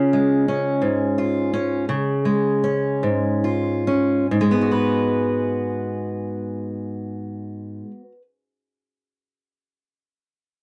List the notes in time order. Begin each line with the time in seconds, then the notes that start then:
Already playing: C#3 C#4 F4
0.13 G#3
0.48 C#4
0.82 G#2
1.18 F4
1.54 C#4
1.89 C#3
2.25 G#3
2.64 C#4
3.03 G#2
3.44 F4
3.87 C#4
4.31 G#2
4.41 G#3
4.51 B3
4.61 F#4
4.72 B4